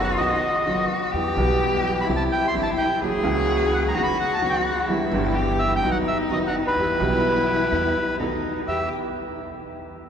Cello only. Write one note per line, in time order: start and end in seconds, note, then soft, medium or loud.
0.00 0.61 F#4 loud
0.66 1.13 F#4 medium
1.12 2.07 G4 loud
2.05 3.01 E4 loud
3.00 3.95 G#4 loud
3.94 4.89 F#4 loud
4.87 5.35 E4 loud
5.33 5.82 G4 loud
5.80 6.74 D#4 medium
6.75 8.21 E4 loud
8.19 8.67 D#4 medium
8.67 8.89 G4 medium